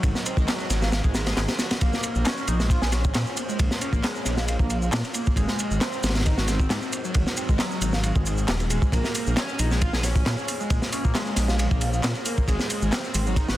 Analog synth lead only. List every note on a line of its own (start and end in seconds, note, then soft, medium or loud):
0.26 0.36 C4 medium
0.38 0.46 G#3 loud
0.48 0.81 F#3 medium
0.82 0.91 F#3 loud
1.05 1.13 G#3 medium
1.15 1.25 G#3 medium
1.27 1.36 G#4 loud
1.59 1.65 F#4 loud
1.82 2.25 A#3 medium
2.26 2.47 C#4 loud
2.48 2.54 D#4 medium
2.60 2.69 G#3 loud
2.70 2.81 F4 medium
2.82 2.91 G#4 loud
2.92 3.36 C#4 medium
3.49 3.57 G#3 loud
3.81 3.92 C#4 medium
3.93 4.02 A#3 loud
4.04 4.36 G#3 medium
4.38 4.46 G#3 loud
4.60 4.69 A#3 medium
5.15 5.25 A#3 medium
5.37 5.80 G#3 medium
5.81 6.03 C4 loud
6.04 6.10 C4 medium
6.15 6.24 F#3 loud
6.26 6.36 D#4 medium
6.38 6.46 F#4 loud
6.48 6.92 C4 medium
7.04 7.13 F#3 loud
7.37 7.48 C4 medium
7.49 7.58 G#3 loud
7.59 7.92 F#3 medium
7.94 8.02 F#3 loud
8.16 8.24 G#3 medium
8.71 8.80 G#3 medium
8.93 9.36 A#3 medium
9.37 9.58 C#4 loud
9.60 9.65 D#4 medium
9.71 9.80 G#3 loud
9.82 9.92 F4 medium
9.93 10.02 G#4 loud
10.04 10.47 C#4 medium
10.60 10.69 G#3 loud
10.93 11.03 C#4 medium
11.04 11.13 A#3 loud
11.15 11.48 G#3 medium
11.49 11.58 G#3 loud
11.71 11.80 A#3 medium
12.26 12.36 A#3 medium
12.48 12.91 G#3 medium
12.92 13.14 C4 loud
13.15 13.21 C4 medium
13.27 13.35 F#3 loud
13.37 13.48 D#4 medium
13.49 13.57 F#4 loud